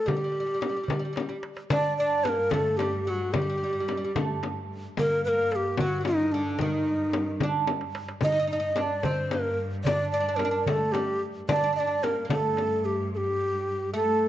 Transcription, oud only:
0.06 0.14 G3 medium
0.16 0.23 G3 soft
0.24 0.31 G3 soft
0.32 0.38 G3 soft
0.40 0.45 G3 soft
0.46 0.53 G3 soft
0.54 0.60 G3 soft
0.61 0.68 G3 soft
0.69 0.75 G3 soft
0.76 0.82 G3 soft
0.83 0.90 G3 soft
0.92 0.98 G3 soft
0.99 1.04 G3 soft
1.05 1.12 G3 soft
1.13 1.19 G3 soft
1.20 1.27 G3 soft
1.29 1.36 G3 soft
1.72 1.99 D4 medium
2.00 2.27 D4 medium
2.27 2.53 A#3 medium
2.54 2.80 A3 medium
2.80 3.08 G3 medium
3.07 3.35 F#3 medium
3.33 3.40 G3 medium
3.42 3.48 G3 soft
3.50 3.56 G3 soft
3.58 3.62 G3 soft
3.64 3.72 G3 medium
3.73 3.79 G3 soft
3.80 3.87 G3 soft
3.88 3.95 G3 soft
3.97 4.04 G3 soft
4.05 4.11 G3 soft
4.17 4.42 A3 medium
4.99 5.26 A#3 medium
5.27 5.81 A#3 medium
5.80 5.99 F#3 medium
6.01 6.07 F#3 soft
6.08 6.34 D#3 medium
6.34 6.61 D3 medium
6.61 7.45 D#3 medium
7.43 7.68 D4 medium
8.25 8.31 D#4 medium
8.32 8.38 D#4 medium
8.39 8.46 D#4 medium
8.47 8.52 D#4 medium
8.53 8.59 D#4 medium
8.60 8.68 D#4 medium
8.77 9.05 D4 medium
9.05 9.30 C4 medium
9.33 9.58 A#3 medium
9.87 10.12 D4 medium
10.14 10.19 D4 medium
10.20 10.27 D4 medium
10.29 10.35 D4 medium
10.36 10.44 D4 medium
10.45 10.50 D4 medium
10.51 10.59 D4 medium
10.67 10.95 A3 medium
10.95 11.20 G3 medium
11.49 11.54 D4 medium
11.56 11.62 D4 medium
11.64 11.71 D4 medium
11.73 11.79 D4 medium
11.80 11.86 D4 medium
11.87 11.95 D4 medium
12.03 12.24 A#3 medium
12.25 12.30 A#3 medium
12.31 13.08 A3 medium
13.94 14.29 A3 medium

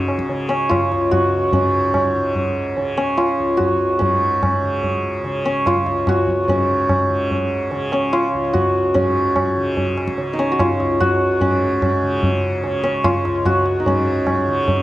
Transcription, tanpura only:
0.00 0.91 C#2 soft
0.00 1.52 G#2 soft
0.00 0.29 C#3 medium
0.29 2.16 C#3 medium
0.91 3.38 C#2 soft
1.52 3.99 G#2 medium
2.16 2.77 C#3 soft
2.77 4.62 C#3 soft
3.39 5.85 C#2 soft
3.99 6.47 G#2 soft
4.62 5.24 C#3 soft
5.24 7.09 C#3 medium
5.86 8.33 C#2 medium
6.47 8.95 G#2 soft
7.09 7.71 C#3 soft
7.71 9.57 C#3 medium
8.33 10.79 C#2 medium
8.96 11.41 G#2 medium
9.57 10.18 C#3 medium
10.18 12.03 C#3 medium
10.79 13.25 C#2 medium
11.41 13.85 G#2 medium
12.03 12.63 C#3 medium
12.63 14.48 C#3 medium
13.26 14.82 C#2 medium
13.86 14.82 G#2 medium
14.48 14.82 C#3 medium

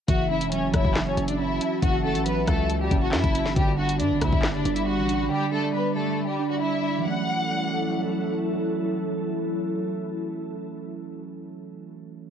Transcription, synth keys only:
0.08 0.72 E3 loud
0.31 1.16 C#4 medium
0.52 1.61 F#3 medium
0.73 1.81 E3 medium
1.17 1.38 C#4 medium
1.39 1.60 C#4 loud
1.61 2.03 C#4 medium
1.82 2.46 E3 medium
2.04 2.90 C#4 medium
2.26 3.35 F#3 medium
2.47 3.56 E3 medium
2.91 3.12 C#4 medium
3.13 3.34 C#4 medium
3.35 3.56 C#4 medium
3.56 4.20 D3 medium
3.78 4.64 D4 medium
4.00 5.09 G3 medium
4.22 5.29 D3 medium
4.66 4.86 D4 medium
4.87 5.07 D4 medium
5.09 5.51 D4 medium
5.30 5.94 D3 loud
5.52 6.38 D4 medium
5.73 6.82 G3 medium
5.96 7.04 D3 medium
6.40 6.60 D4 medium
6.61 6.81 D4 medium
6.82 7.04 D4 medium
6.98 10.39 E3 medium
6.98 10.43 F#3 medium
7.06 10.47 A3 medium
7.10 10.51 C#4 medium

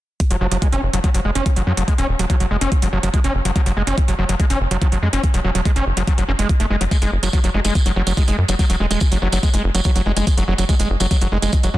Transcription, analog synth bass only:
0.31 0.37 F#1 medium
0.41 0.47 F#1 loud
0.52 0.58 F#1 medium
0.72 0.79 F#1 medium
0.83 0.89 F#1 loud
0.93 1.00 F#1 medium
1.14 1.21 F#1 medium
1.25 1.31 F#1 loud
1.35 1.41 F#1 medium
1.56 1.62 F#1 medium
1.67 1.73 F#2 loud
1.77 1.83 F#1 medium
1.98 2.04 E1 medium
2.09 2.15 E1 medium
2.19 2.25 E1 medium
2.40 2.46 F#1 medium
2.51 2.57 F#1 loud
2.61 2.67 F#1 medium
2.82 2.88 F#1 medium
2.93 2.99 F#1 loud
3.03 3.09 F#1 medium
3.24 3.30 F#1 medium
3.35 3.41 F#1 loud
3.45 3.51 F#1 medium
3.66 3.72 F#1 medium
3.77 3.83 F#1 loud
3.87 3.93 F#1 medium
4.08 4.14 F#1 medium
4.19 4.25 F#1 loud
4.29 4.35 F#1 medium
4.50 4.56 F#1 medium
4.61 4.67 F#1 loud
4.71 4.77 F#1 medium
4.92 4.98 F#1 medium
5.03 5.09 F#2 loud
5.13 5.19 F#1 medium
5.34 5.40 E1 medium
5.44 5.51 E1 loud
5.55 5.61 E1 medium
5.76 5.82 F#1 medium
5.86 5.93 F#1 medium
5.97 6.03 F#1 medium
6.18 6.24 F#1 medium
6.28 6.34 F#1 loud
6.39 6.45 F#1 medium
6.60 6.66 F#1 medium
6.70 6.76 F#1 loud
6.81 6.87 F#1 medium
7.02 7.08 F#1 medium
7.12 7.18 F#1 medium
7.23 7.29 F#1 medium
7.44 7.50 F#1 medium
7.54 7.60 F#1 loud
7.65 7.71 F#1 medium
7.86 7.92 F#1 medium
7.96 8.02 F#1 loud
8.07 8.13 F#1 medium
8.28 8.34 F#1 medium
8.38 8.44 F#2 loud
8.49 8.55 F#1 medium
8.70 8.76 E1 medium
8.80 8.86 E1 loud
8.91 8.97 E1 medium
9.12 9.18 F#1 medium
9.22 9.28 F#1 loud
9.33 9.39 F#1 loud
9.54 9.60 F#1 medium
9.64 9.70 F#1 loud
9.75 9.81 F#1 loud
9.96 10.02 F#1 medium
10.06 10.12 F#1 loud
10.17 10.23 F#1 medium
10.38 10.44 F#1 medium
10.48 10.54 F#1 loud
10.59 10.65 F#1 medium
10.79 10.86 F#1 medium
10.90 10.96 F#1 loud
11.01 11.07 F#1 loud
11.21 11.27 F#1 medium
11.32 11.38 F#1 loud
11.42 11.48 F#1 loud
11.63 11.69 F#1 medium
11.74 11.78 F#2 loud

